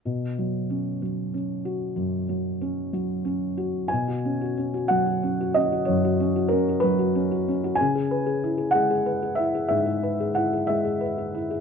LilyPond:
\new Staff \with { instrumentName = "Felt piano" } { \time 6/8 \key cis \dorian \tempo 4. = 62 << { r2. | r2. | gis''4. fis''4 dis''8 | cis''4 ais'8 b'4 r8 |
gis''4. fis''4 e''8 | e''4 fis''8 e''4 r8 | } \\ { b,8 fis8 cis'8 fis8 cis'8 fis'8 | fis,8 fis8 cis'8 fis8 cis'8 fis'8 | b,16 fis'16 cis'16 fis'16 cis'16 fis'16 fis16 fis'16 cis'16 fis'16 cis'16 fis'16 | fis,16 fis'16 cis'16 fis'16 cis'16 fis'16 fis16 fis'16 cis'16 fis'16 cis'16 fis'16 |
cis16 gis'16 b'16 gis'16 e'16 gis'16 gis16 gis'16 b'16 gis'16 e'16 gis'16 | gis,16 gis'16 b'16 gis'16 e'16 gis'16 gis16 gis'16 b'16 gis'16 e'16 gis'16 | } >> }